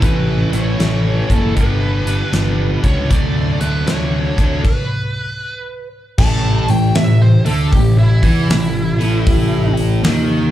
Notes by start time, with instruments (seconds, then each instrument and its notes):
0.00 picked electric bass A1, distorted electric guitar A2 E3 A3 C#4 E4, lead electric guitar B4, kick, closed hi-hat
0.51 picked electric bass A1, distorted electric guitar A2 E3 A3 C#4 E4, lead electric guitar C#5, closed hi-hat
0.78 picked electric bass A1, distorted electric guitar A2 E3 A3 C#4 E4, snare, closed hi-hat
1.28 picked electric bass F#1, distorted electric guitar A2 E3 A3 C#4 E4, lead electric guitar A4, kick, closed hi-hat
1.55 picked electric bass G1, distorted electric guitar G2 D3 G3 B3 D4, lead electric guitar B4, kick, closed hi-hat
2.06 distorted electric guitar G2 D3 G3 B3 D4, closed hi-hat
2.33 picked electric bass G1, distorted electric guitar G2 D3 G3 B3 D4, snare, closed hi-hat
2.83 picked electric bass C#2, distorted electric guitar G2 D3 G3 B3 D4, lead electric guitar C#5, kick, closed hi-hat
3.09 picked electric bass D2, distorted electric guitar D3 F#3 A3 D4, lead electric guitar D5, kick, closed hi-hat
3.59 picked electric bass D2, distorted electric guitar D3 F#3 A3 D4, lead electric guitar B4, closed hi-hat
3.86 picked electric bass D2, distorted electric guitar D3 F#3 A3 D4, lead electric guitar C#5, snare, closed hi-hat
4.36 picked electric bass D2, distorted electric guitar D3 F#3 A3 D4, kick, closed hi-hat
4.64 lead electric guitar B4, kick, crash
6.18 picked electric bass A1, distorted electric guitar A2, lead electric guitar A5, kick, crash
6.68 picked electric bass A1, distorted electric guitar A2, lead electric guitar G5, open hi-hat
6.95 picked electric bass A1, distorted electric guitar A2, lead electric guitar E5, snare, open hi-hat
7.22 lead electric guitar C5
7.45 picked electric bass D2, distorted electric guitar D3, lead electric guitar A4, open hi-hat
7.72 picked electric bass A1, distorted electric guitar A2, lead electric guitar G4, kick, open hi-hat
7.98 lead electric guitar E4
8.23 picked electric bass E2, distorted electric guitar E3, lead electric guitar E4, kick, open hi-hat
8.50 picked electric bass A1, distorted electric guitar A2, snare, open hi-hat
8.99 picked electric bass A1, distorted electric guitar A2, open hi-hat
9.27 kick, open hi-hat
9.77 open hi-hat
10.03 picked electric bass D#2, distorted electric guitar D#3, snare, open hi-hat